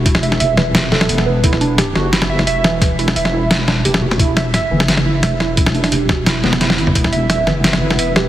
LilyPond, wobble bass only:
\new Staff \with { instrumentName = "Wobble bass" } { \clef bass \time 4/4 \key e \minor \tempo 4 = 174 e,,4 e,,2 e,,4 | e,,4. fis,,4. e,,4~ | e,,4 e,,2 e,,4 | e,,4. fis,,4. e,,4~ |
e,,4 e,,4. e,,4 g,,8 | e,,4. fis,,4. e,,4 | }